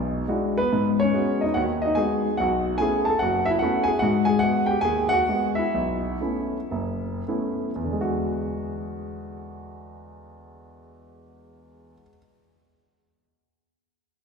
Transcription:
0.00 0.23 B1 medium
0.00 0.23 B2 medium
0.28 0.60 G#3 medium
0.28 0.60 D4 soft
0.28 0.60 E4 soft
0.28 0.60 F#4 medium
0.58 0.99 B3 medium
0.58 0.98 B4 medium
0.73 1.10 G#2 medium
1.00 1.41 C#4 medium
1.00 1.44 C#5 medium
1.14 1.44 G#3 soft
1.14 1.44 B3 soft
1.14 1.44 F#4 soft
1.41 1.57 D#4 medium
1.41 1.57 D#5 medium
1.54 1.93 D#2 medium
1.54 1.63 F#4 medium
1.54 1.61 F#5 medium
1.82 1.96 D#5 medium
1.86 1.98 D#4 medium
1.95 2.27 G#3 soft
1.95 2.27 B3 soft
1.95 2.27 F#4 medium
1.95 2.37 G#4 medium
1.95 2.39 G#5 medium
2.37 2.76 B1 medium
2.37 2.79 F#4 medium
2.37 2.77 F#5 medium
2.78 3.09 A3 soft
2.78 3.09 B3 soft
2.78 3.09 C#4 soft
2.78 3.09 E4 medium
2.78 3.08 G#5 loud
2.82 3.07 G#4 medium
3.05 3.19 A5 medium
3.10 3.22 A4 medium
3.19 3.57 F#1 medium
3.19 3.47 F#4 medium
3.19 3.46 F#5 medium
3.46 3.51 E5 medium
3.50 3.55 E4 medium
3.59 3.91 A3 medium
3.59 3.91 B3 soft
3.59 3.91 C#4 soft
3.59 3.91 E4 medium
3.59 3.86 F#5 medium
3.63 3.88 F#4 medium
3.84 4.01 G#5 medium
3.88 4.01 G#4 medium
3.99 4.38 G#2 medium
3.99 4.26 F#5 medium
4.03 4.28 F#4 medium
4.25 4.42 G#5 medium
4.29 4.43 G#4 medium
4.39 4.73 G#3 medium
4.39 4.70 F#5 loud
4.43 4.73 B3 soft
4.43 4.73 F#4 medium
4.66 4.84 G5 medium
4.71 4.84 G4 medium
4.81 5.23 D#2 medium
4.81 5.12 G#4 medium
4.81 5.13 G#5 loud
5.09 5.28 F#4 medium
5.09 5.53 F#5 loud
5.29 5.60 G#3 soft
5.29 5.61 B3 soft
5.29 5.61 F#4 medium
5.55 6.21 E4 medium
5.55 7.22 E5 medium
5.74 6.15 B1 medium
6.21 6.56 A3 soft
6.21 6.56 B3 soft
6.21 6.56 C#4 soft
6.21 6.57 E4 medium
6.71 7.20 F#1 medium
7.28 7.69 A3 soft
7.28 7.69 B3 soft
7.28 7.70 C#4 soft
7.28 7.70 E4 soft
7.76 11.92 E2 medium
7.84 12.01 D3 medium
7.93 12.09 G#3 soft
8.01 12.17 F#4 medium

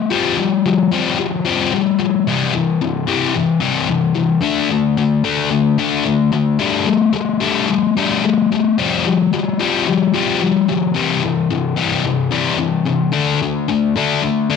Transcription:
0.11 0.37 F3 medium
0.11 0.37 G3 medium
0.11 0.38 C4 medium
0.38 0.63 F3 medium
0.38 0.63 G3 medium
0.66 0.90 F3 medium
0.66 0.90 G3 medium
0.92 1.18 F3 medium
0.92 1.18 G3 medium
0.92 1.19 C4 medium
1.19 1.44 F3 medium
1.19 1.44 G3 medium
1.45 1.72 F3 medium
1.45 1.72 G3 medium
1.45 1.72 C4 loud
1.73 1.98 F3 medium
1.73 1.99 G3 medium
2.00 2.25 F3 medium
2.00 2.25 G3 medium
2.27 2.52 C3 medium
2.27 2.53 E3 medium
2.27 2.54 G3 medium
2.53 2.79 C3 medium
2.53 2.79 E3 medium
2.81 3.06 C3 medium
2.81 3.06 E3 medium
3.07 3.34 C3 medium
3.07 3.34 E3 medium
3.07 3.34 G3 medium
3.35 3.59 C3 medium
3.35 3.60 E3 medium
3.60 3.88 C3 medium
3.60 3.88 E3 medium
3.60 3.88 G3 loud
3.89 4.14 C3 medium
3.89 4.14 E3 medium
4.15 4.41 C3 medium
4.15 4.41 E3 medium
4.42 4.69 D3 medium
4.42 4.70 A3 medium
4.42 4.70 D4 medium
4.71 4.96 D3 medium
4.71 4.96 A3 medium
4.98 5.23 D3 medium
4.98 5.23 A3 medium
5.24 5.49 D3 medium
5.24 5.49 A3 medium
5.24 5.51 D4 medium
5.50 5.77 D3 medium
5.50 5.77 A3 medium
5.78 6.03 D3 medium
5.78 6.04 A3 medium
5.78 6.06 D4 medium
6.04 6.31 D3 medium
6.04 6.31 A3 medium
6.33 6.58 D3 medium
6.33 6.59 A3 medium
6.59 6.85 G3 medium
6.59 6.85 A3 medium
6.59 6.87 D4 loud
6.86 7.12 G3 medium
6.86 7.12 A3 medium
7.13 7.39 G3 medium
7.13 7.40 A3 medium
7.40 7.68 G3 medium
7.40 7.68 A3 medium
7.40 7.68 D4 medium
7.69 7.95 G3 medium
7.69 7.95 A3 medium
7.97 8.23 G3 medium
7.97 8.24 A3 medium
7.97 8.24 D4 medium
8.25 8.50 G3 medium
8.25 8.50 A3 medium
8.52 8.77 G3 medium
8.52 8.77 A3 medium
8.78 9.04 F3 medium
8.78 9.05 G3 medium
8.78 9.05 C4 medium
9.06 9.31 F3 medium
9.06 9.32 G3 medium
9.34 9.58 F3 medium
9.34 9.58 G3 medium
9.60 9.86 F3 medium
9.60 9.87 G3 medium
9.60 9.87 C4 medium
9.87 10.12 F3 medium
9.87 10.13 G3 medium
10.14 10.40 F3 medium
10.14 10.41 G3 medium
10.14 10.41 C4 medium
10.42 10.67 F3 medium
10.42 10.67 G3 medium
10.69 10.94 F3 medium
10.69 10.94 G3 medium
10.95 11.21 C3 medium
10.95 11.22 E3 medium
10.95 11.22 G3 medium
11.23 11.48 C3 medium
11.23 11.48 E3 medium
11.50 11.75 C3 medium
11.50 11.75 E3 medium
11.76 12.03 C3 medium
11.76 12.03 E3 medium
11.76 12.04 G3 loud
12.05 12.30 C3 medium
12.05 12.30 E3 medium
12.31 12.57 C3 medium
12.31 12.58 E3 medium
12.31 12.58 G3 medium
12.59 12.84 C3 medium
12.59 12.84 E3 medium
12.86 13.11 C3 medium
12.86 13.12 E3 medium
13.13 13.39 D3 medium
13.13 13.39 A3 medium
13.13 13.40 D4 medium
13.42 13.66 D3 medium
13.42 13.67 A3 medium
13.68 13.93 D3 medium
13.68 13.93 A3 medium
13.96 14.21 D3 medium
13.96 14.22 A3 medium
13.96 14.22 D4 medium
14.23 14.48 D3 medium
14.23 14.48 A3 medium
14.50 14.56 D3 medium
14.50 14.56 A3 medium
14.50 14.56 D4 medium

